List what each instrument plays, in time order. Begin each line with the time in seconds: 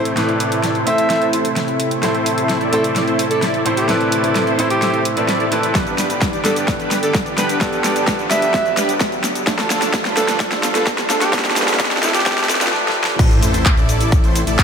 Already playing: grand piano A2 A3 C4 E4 C5, analog synth pad C3 A3 E4, supersaw synth E4 A4 C5, riser
0.05 closed hi-hat
0.16 grand piano A2 A3 C4 E4 B4, supersaw synth E4 A4 D5, snare, closed hi-hat
0.29 closed hi-hat
0.40 open hi-hat
0.52 closed hi-hat
0.63 snare, closed hi-hat
0.75 supersaw synth E4 A4 C5, closed hi-hat
0.85 grand piano A2 A3 C4 E4 C5, alto saxophone E5, open hi-hat
0.98 closed hi-hat
1.10 supersaw synth E4 A4 C5, snare, closed hi-hat
1.22 closed hi-hat
1.33 supersaw synth E4 A4 C5, open hi-hat
1.45 closed hi-hat
1.56 snare, closed hi-hat
1.68 closed hi-hat
1.80 open hi-hat
1.91 closed hi-hat
2.02 grand piano A2 A3 C4 E4 C5, supersaw synth E4 A4 C5, snare, closed hi-hat
2.15 closed hi-hat
2.26 open hi-hat
2.38 closed hi-hat
2.49 snare, closed hi-hat
2.61 supersaw synth E4 A4 D5, closed hi-hat
2.71 grand piano A2 A3 C4 E4 C5, alto saxophone A4, open hi-hat
2.84 closed hi-hat
2.96 snare, closed hi-hat
3.07 supersaw synth E4 A4 C5, closed hi-hat
3.19 open hi-hat
3.31 supersaw synth E4 A4 D5, alto saxophone A4, closed hi-hat
3.42 snare, closed hi-hat
3.54 closed hi-hat
3.65 grand piano A2 A3 C4 E4 C5, supersaw synth E4 A4 C5, open hi-hat
3.77 alto saxophone G4, closed hi-hat
3.88 grand piano A2 A3 C4 E4 B4, supersaw synth E4 A4 D5, snare, closed hi-hat
4.01 closed hi-hat
4.12 open hi-hat
4.24 closed hi-hat
4.35 snare, closed hi-hat
4.47 supersaw synth E4 A4 C5, closed hi-hat
4.58 grand piano A2 A3 C4 E4 C5, alto saxophone E4, open hi-hat
4.70 alto saxophone G4, closed hi-hat
4.82 supersaw synth E4 A4 C5, snare, closed hi-hat
4.94 closed hi-hat
5.05 open hi-hat
5.16 grand piano A2 A3 C4 E4 D5, supersaw synth E4 A4 B4, closed hi-hat
5.28 snare, closed hi-hat
5.40 supersaw synth E4 A4 D5, closed hi-hat
5.51 grand piano A3 C4 E4 B4, supersaw synth E4 A4 D5, open hi-hat
5.63 closed hi-hat
5.74 grand piano G2 G3 B3 D4 B4, analog synth pad D3 B3 G4, supersaw synth D4 G4 B4, kick, snare, closed hi-hat, shaker
5.87 closed hi-hat, shaker
5.98 snare, open hi-hat, shaker
6.10 closed hi-hat, shaker
6.21 kick, snare, closed hi-hat, shaker
6.33 supersaw synth D4 G4 D5, closed hi-hat, shaker
6.44 grand piano G2 G3 B3 D4 B4, alto saxophone A4, snare, open hi-hat, shaker
6.56 closed hi-hat, shaker
6.68 kick, snare, closed hi-hat, shaker
6.80 supersaw synth D4 G4 B4, closed hi-hat, shaker
6.91 snare, open hi-hat, shaker
7.03 supersaw synth D4 G4 D5, alto saxophone A4, closed hi-hat, shaker
7.14 kick, snare, closed hi-hat, shaker
7.26 closed hi-hat, shaker
7.37 grand piano G2 G3 B3 D4 B4, supersaw synth D4 G4 B4, alto saxophone B4, snare, open hi-hat, shaker
7.49 closed hi-hat, shaker
7.60 grand piano G2 G3 B3 D4 A4, supersaw synth D4 D5, kick, snare, closed hi-hat, shaker
7.73 closed hi-hat, shaker
7.84 snare, open hi-hat, shaker
7.96 closed hi-hat, shaker
8.07 kick, snare, closed hi-hat, shaker
8.19 supersaw synth D4 G4 B4, closed hi-hat, shaker
8.30 grand piano G2 G3 B3 D4 B4, alto saxophone E5, snare, open hi-hat, shaker
8.42 closed hi-hat, shaker
8.54 kick, snare, closed hi-hat, shaker
8.66 closed hi-hat, shaker
8.77 supersaw synth D4 G4 B4, snare, open hi-hat, shaker
8.89 closed hi-hat, shaker
9.00 kick, snare, closed hi-hat, shaker
9.12 closed hi-hat, shaker
9.24 snare, open hi-hat, shaker
9.35 closed hi-hat, shaker
9.46 analog synth pad D3 A3 F4, grand piano F3 A3 D4 A4, supersaw synth D4 F4 A4, kick, snare, closed hi-hat, shaker
9.59 snare, closed hi-hat, shaker
9.70 snare, open hi-hat, shaker
9.82 snare, closed hi-hat, shaker
9.94 kick, snare, closed hi-hat, shaker
10.05 supersaw synth D4 F4 B4, snare, closed hi-hat, shaker
10.16 grand piano F3 A3 D4 A4, alto saxophone A4, snare, open hi-hat, shaker
10.28 snare, closed hi-hat, shaker
10.40 kick, snare, closed hi-hat, shaker
10.52 supersaw synth D4 F4 A4, snare, closed hi-hat, shaker
10.63 snare, open hi-hat, shaker
10.75 supersaw synth D4 F4 B4, alto saxophone A4, snare, closed hi-hat, shaker
10.87 kick, snare, closed hi-hat, shaker
10.98 snare, closed hi-hat, shaker
11.09 grand piano F3 A3 D4 A4, supersaw synth D4 F4 A4, snare, open hi-hat, shaker
11.21 alto saxophone G4, snare, closed hi-hat, shaker
11.32 grand piano F3 A3 D4 G4, supersaw synth D4 F4 B4, kick, snare, closed hi-hat, shaker
11.39 snare
11.45 snare, closed hi-hat, shaker
11.51 snare
11.56 snare, open hi-hat, shaker
11.62 snare
11.68 snare, closed hi-hat, shaker
11.74 snare
11.80 kick, snare, closed hi-hat, shaker
11.85 snare
11.91 supersaw synth D4 F4 A4, snare, closed hi-hat, shaker
11.97 snare
12.02 grand piano F3 A3 D4 A4, alto saxophone E4, snare, open hi-hat, shaker
12.09 snare
12.14 alto saxophone G4, snare, closed hi-hat, shaker
12.20 snare
12.26 supersaw synth D4, kick, snare, closed hi-hat, shaker
12.32 snare
12.38 snare, closed hi-hat, shaker
12.44 snare
12.49 snare, open hi-hat, shaker
12.55 snare
12.60 grand piano F3 A3 D4 B4, supersaw synth D4 F4 G4, snare, closed hi-hat, shaker
12.67 snare
12.73 snare
12.88 snare
13.04 snare
13.19 detuned saw bass A1, analog synth pad C3 A3 E4, supersaw synth E4 A4 C5, kick, closed hi-hat, crash, sub drop, shaker
13.31 closed hi-hat, shaker
13.43 open hi-hat, shaker
13.54 closed hi-hat, shaker
13.66 kick, clap, closed hi-hat, shaker
13.77 detuned saw bass A1, supersaw synth E4 A4 D5, closed hi-hat, shaker
13.89 open hi-hat, shaker
14.01 closed hi-hat, shaker
14.12 kick, closed hi-hat, shaker
14.24 detuned saw bass A1, supersaw synth E4 A4 C5, closed hi-hat, shaker
14.36 open hi-hat, shaker
14.47 detuned saw bass A1, supersaw synth E4 A4 D5, closed hi-hat, shaker
14.59 kick, clap, closed hi-hat, shaker